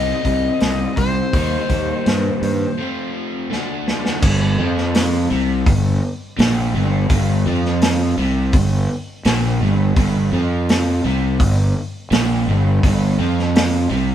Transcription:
0.00 0.11 C2 loud
0.00 1.31 C3 medium
0.00 1.32 G3 medium
0.00 1.32 C4 medium
0.00 1.33 D#4 medium
0.00 1.01 D#5 medium
0.25 0.47 C2 medium
0.25 kick medium
0.25 open hi-hat soft
0.60 0.84 C2 medium
0.60 snare loud
0.60 open hi-hat medium
0.97 1.20 C2 medium
0.97 3.10 C5 medium
0.97 kick medium
0.97 open hi-hat medium
1.33 1.56 D#2 medium
1.33 2.76 D#3 medium
1.33 2.76 G3 medium
1.33 2.77 A#3 medium
1.33 2.77 D#4 medium
1.33 kick loud
1.33 open hi-hat medium
1.69 1.92 D#2 medium
1.69 kick medium
1.69 open hi-hat soft
2.06 2.28 G2 medium
2.06 snare loud
2.06 open hi-hat medium
2.42 2.64 G2 medium
2.42 open hi-hat soft
2.78 3.48 F3 medium
2.78 3.48 A3 medium
2.78 3.49 C4 medium
2.78 3.49 F4 medium
3.50 4.20 D3 medium
3.50 4.20 A3 medium
3.50 4.21 D4 medium
3.50 4.21 F#4 medium
3.50 snare medium
3.88 snare medium
4.05 snare medium
4.22 4.56 G1 medium
4.22 4.57 G2 loud
4.22 kick loud
4.22 crash loud
4.59 5.26 F2 medium
4.59 5.29 F3 loud
4.77 snare soft
4.94 snare loud
4.94 open hi-hat medium
5.31 5.64 C2 loud
5.31 5.65 C3 medium
5.66 6.00 G1 medium
5.66 5.95 G2 medium
5.66 kick loud
5.66 open hi-hat medium
6.38 6.72 A#1 loud
6.38 6.73 A#2 loud
6.38 snare loud
6.38 open hi-hat medium
6.74 7.07 G1 loud
6.74 7.09 G2 loud
7.09 7.43 G1 medium
7.09 7.45 G2 loud
7.09 kick loud
7.09 open hi-hat medium
7.46 8.13 F2 loud
7.46 8.17 F3 loud
7.65 snare soft
7.81 snare loud
7.81 open hi-hat medium
8.18 8.51 C2 medium
8.18 8.52 C3 loud
8.53 8.87 G1 medium
8.53 8.83 G2 medium
8.53 kick loud
8.53 open hi-hat medium
9.25 9.58 A#1 medium
9.25 9.60 A#2 loud
9.25 snare loud
9.25 open hi-hat medium
9.61 9.94 G1 medium
9.61 9.96 G2 loud
9.96 10.30 G1 loud
9.96 10.31 G2 loud
9.96 kick loud
9.96 open hi-hat medium
10.32 11.00 F2 loud
10.32 11.03 F3 medium
10.69 snare loud
10.69 open hi-hat medium
11.04 11.37 C2 medium
11.04 11.39 C3 loud
11.40 11.73 G1 medium
11.40 11.69 G2 medium
11.40 kick loud
11.40 open hi-hat medium
12.11 12.44 A#1 loud
12.11 12.46 A#2 loud
12.11 snare loud
12.11 open hi-hat medium
12.47 12.81 G1 medium
12.47 12.83 G2 loud
12.83 13.17 G1 loud
12.83 13.18 G2 loud
12.83 kick loud
12.83 open hi-hat medium
13.19 13.87 F2 medium
13.19 13.90 F3 loud
13.39 snare soft
13.55 snare loud
13.55 open hi-hat medium
13.90 14.15 C2 medium
13.90 14.15 C3 medium

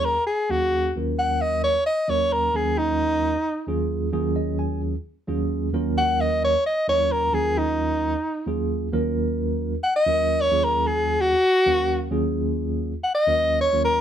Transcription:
0.00 0.15 D#2 medium
0.00 0.15 F#3 medium
0.00 0.15 A#3 medium
0.00 0.15 C#4 medium
0.00 0.15 F4 medium
0.00 0.16 G#4 medium
0.05 0.26 A#4 medium
0.26 0.52 G#4 medium
0.49 0.89 D#2 medium
0.49 0.89 F#3 soft
0.49 0.90 A#3 medium
0.49 0.90 C#4 medium
0.49 0.94 F#4 loud
0.49 0.90 G#4 medium
0.49 0.90 F5 soft
0.95 1.76 D#2 medium
0.95 1.76 F#3 medium
0.95 1.76 A#3 medium
0.95 1.76 C#4 medium
0.95 1.76 F4 medium
0.95 1.76 A#4 medium
1.18 1.43 F#5 medium
1.41 1.63 D#5 medium
1.64 1.86 C#5 medium
1.86 2.11 D#5 medium
2.07 2.48 D#2 medium
2.07 2.49 F#3 medium
2.07 2.49 A#3 medium
2.07 2.49 C#4 medium
2.07 2.49 F4 medium
2.07 2.49 A#4 medium
2.07 2.34 C#5 medium
2.33 2.58 A#4 medium
2.53 3.34 D#2 medium
2.53 3.35 F#3 medium
2.53 3.35 A#3 medium
2.53 3.35 C#4 medium
2.53 3.35 F4 medium
2.53 2.80 G#4 medium
2.53 3.35 A#4 medium
2.78 3.66 D#4 loud
3.67 4.08 D#2 medium
3.67 4.08 F#3 medium
3.67 4.08 A#3 medium
3.67 4.08 C#4 medium
3.67 4.09 F4 medium
3.67 4.09 G#4 medium
4.13 4.94 D#2 medium
4.13 4.94 F#3 medium
4.13 4.94 A#3 medium
4.13 4.94 C#4 medium
4.13 4.94 F4 medium
4.13 4.94 G#4 medium
4.36 4.58 D#5 medium
4.59 4.80 G#5 medium
5.27 5.68 D#2 medium
5.27 5.68 F#3 medium
5.27 5.68 A#3 medium
5.27 5.68 C#4 medium
5.27 5.68 F4 medium
5.27 5.69 G#4 medium
5.73 6.54 D#2 medium
5.73 6.54 F#3 medium
5.73 6.54 A#3 medium
5.73 6.54 C#4 medium
5.73 6.55 F4 medium
5.73 6.55 A#4 medium
5.97 6.22 F#5 loud
6.21 6.42 D#5 medium
6.44 6.65 C#5 medium
6.66 6.88 D#5 medium
6.87 7.28 D#2 medium
6.87 7.28 F#3 medium
6.87 7.28 A#3 medium
6.87 7.28 C#4 medium
6.87 7.28 F4 medium
6.87 7.28 A#4 medium
6.87 7.13 C#5 loud
7.12 7.36 A#4 medium
7.32 8.13 D#2 medium
7.32 8.14 F#3 medium
7.32 8.14 A#3 medium
7.32 8.14 C#4 medium
7.32 8.14 F4 medium
7.32 7.60 G#4 medium
7.32 8.14 A#4 medium
7.58 8.46 D#4 medium
8.46 8.87 D#2 medium
8.46 8.87 F#3 medium
8.46 8.87 A#3 medium
8.46 8.87 C#4 medium
8.46 8.88 F4 medium
8.46 8.88 G#4 medium
8.92 9.73 D#2 medium
8.92 9.73 F#3 medium
8.92 9.73 A#3 medium
8.92 9.74 C#4 medium
8.92 9.74 F4 medium
8.92 9.74 A#4 medium
9.84 9.95 F#5 medium
9.96 10.42 D#5 loud
10.06 10.47 D#2 medium
10.06 10.47 F#3 medium
10.06 10.47 A#3 medium
10.06 10.47 C#4 medium
10.06 10.47 F4 medium
10.06 10.48 A#4 medium
10.41 10.66 C#5 loud
10.51 11.32 D#2 medium
10.51 11.33 F#3 medium
10.51 11.33 A#3 medium
10.51 11.33 C#4 medium
10.51 11.33 F4 medium
10.51 11.33 G#4 medium
10.64 10.88 A#4 medium
10.87 11.22 G#4 loud
11.21 12.09 F#4 loud
11.66 12.06 D#2 medium
11.66 12.06 F#3 medium
11.66 12.07 A#3 medium
11.66 12.07 C#4 medium
11.66 12.07 A#4 medium
11.66 12.07 F5 medium
12.10 12.92 D#2 medium
12.10 12.92 F#3 medium
12.10 12.92 A#3 medium
12.10 12.92 C#4 medium
12.10 12.93 F4 medium
12.10 12.93 G#4 medium
13.03 13.14 F#5 medium
13.15 13.59 D#5 loud
13.26 13.67 D#2 medium
13.26 13.67 F#3 medium
13.26 13.67 A#3 medium
13.26 13.67 C#4 medium
13.26 13.67 F4 medium
13.26 13.67 A#4 medium
13.61 13.83 C#5 medium
13.72 14.01 D#2 medium
13.72 14.01 F#3 medium
13.72 14.01 A#3 medium
13.72 14.01 C#4 medium
13.72 14.01 F4 medium
13.72 14.01 A#4 medium
13.84 14.01 A#4 loud

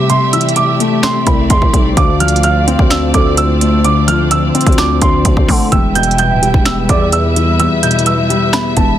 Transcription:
0.00 0.09 C3 medium
0.00 0.18 C3 loud
0.00 0.33 E3 medium
0.00 1.03 G3 medium
0.00 0.80 A3 loud
0.00 5.68 A3 medium
0.00 0.33 C4 medium
0.00 1.93 G4 medium
0.00 1.93 E5 medium
0.09 1.25 C3 medium
0.09 5.68 D5 medium
0.09 0.27 C6 medium
0.09 closed hi-hat medium
0.33 1.50 E3 medium
0.33 0.51 E6 medium
0.33 closed hi-hat medium
0.41 closed hi-hat medium
0.49 closed hi-hat medium
0.56 1.00 D6 medium
0.56 closed hi-hat medium
0.80 1.97 A3 loud
0.80 closed hi-hat medium
1.03 1.97 C4 medium
1.03 1.21 C6 medium
1.03 finger snap medium
1.03 cross-stick loud
1.03 snare loud
1.03 closed hi-hat medium
1.27 1.49 C2 loud
1.27 1.97 C3 medium
1.27 1.44 B5 medium
1.27 kick medium
1.27 closed hi-hat medium
1.50 1.61 E2 loud
1.50 1.94 C6 medium
1.50 kick loud
1.50 closed hi-hat medium
1.62 1.73 C2 loud
1.62 kick loud
1.73 1.96 B1 loud
1.73 1.97 G3 medium
1.73 kick loud
1.73 closed hi-hat medium
1.97 2.76 D2 loud
1.97 3.13 D3 medium
1.97 5.68 F4 medium
1.97 5.68 C5 medium
1.97 3.10 F5 loud
1.97 2.15 D6 medium
1.97 kick loud
1.97 closed hi-hat medium
2.20 3.38 F3 medium
2.20 2.38 F6 medium
2.20 closed hi-hat medium
2.28 closed hi-hat medium
2.36 closed hi-hat soft
2.43 2.88 F6 medium
2.43 closed hi-hat medium
2.67 3.85 C4 loud
2.67 closed hi-hat medium
2.79 3.13 D2 loud
2.79 kick loud
2.90 4.08 D4 medium
2.90 3.08 E6 medium
2.90 finger snap medium
2.90 snare loud
2.90 closed hi-hat medium
3.14 4.51 D2 loud
3.14 3.83 D3 medium
3.14 3.36 A4 medium
3.14 3.32 D6 medium
3.14 kick medium
3.14 closed hi-hat medium
3.37 3.82 E6 medium
3.37 closed hi-hat medium
3.61 4.78 A3 medium
3.61 closed hi-hat medium
3.85 5.00 D3 medium
3.85 4.02 D6 medium
3.85 closed hi-hat medium
4.08 5.25 F3 medium
4.08 4.25 F6 medium
4.08 closed hi-hat medium
4.31 4.75 E6 medium
4.31 closed hi-hat medium
4.55 5.72 C4 loud
4.55 closed hi-hat medium
4.61 closed hi-hat medium
4.67 5.00 D2 loud
4.67 kick loud
4.67 closed hi-hat soft
4.72 closed hi-hat soft
4.78 5.72 D4 medium
4.78 4.96 D6 medium
4.78 finger snap medium
4.78 cross-stick loud
4.78 snare loud
4.78 closed hi-hat medium
5.01 5.24 D2 loud
5.01 5.72 D3 medium
5.01 5.68 C6 medium
5.01 kick medium
5.01 closed hi-hat medium
5.25 5.36 D2 loud
5.25 kick loud
5.25 closed hi-hat medium
5.37 5.48 D2 loud
5.37 kick loud
5.48 5.71 D3 loud
5.48 5.72 A3 medium
5.48 kick loud
5.48 open hi-hat medium
5.72 6.32 E1 loud
5.72 6.88 E2 medium
5.72 8.99 G3 medium
5.72 8.99 E4 medium
5.72 8.99 B4 medium
5.72 8.99 E5 medium
5.72 6.85 G5 loud
5.72 5.90 E6 medium
5.72 kick loud
5.72 closed hi-hat medium
5.95 7.13 B2 medium
5.95 6.13 G6 medium
5.95 closed hi-hat medium
6.03 closed hi-hat medium
6.11 closed hi-hat medium
6.18 6.63 G6 medium
6.18 closed hi-hat medium
6.31 6.44 D1 loud
6.42 6.54 E1 medium
6.42 7.59 G3 loud
6.42 closed hi-hat medium
6.54 6.88 E1 loud
6.54 kick loud
6.65 7.83 B3 medium
6.65 6.83 E6 medium
6.65 finger snap loud
6.65 snare loud
6.65 closed hi-hat medium
6.89 7.58 E2 medium
6.89 7.68 E2 loud
6.89 7.11 D5 medium
6.89 7.07 D6 medium
6.89 kick medium
6.89 closed hi-hat medium
7.12 7.57 E6 medium
7.12 closed hi-hat medium
7.36 8.53 E3 medium
7.36 closed hi-hat medium
7.60 8.75 E2 medium
7.60 7.77 E6 medium
7.60 closed hi-hat medium
7.83 8.99 B2 medium
7.83 8.01 G6 medium
7.83 closed hi-hat medium
7.91 closed hi-hat medium
7.99 closed hi-hat soft
8.06 8.50 E6 medium
8.06 closed hi-hat medium
8.30 8.99 G3 loud
8.30 closed hi-hat medium
8.53 8.99 B3 medium
8.53 8.71 B5 medium
8.53 finger snap loud
8.53 cross-stick loud
8.53 snare loud
8.53 closed hi-hat medium
8.76 8.99 E1 loud
8.76 8.99 E2 medium
8.76 8.94 A5 medium
8.76 kick medium
8.76 closed hi-hat medium

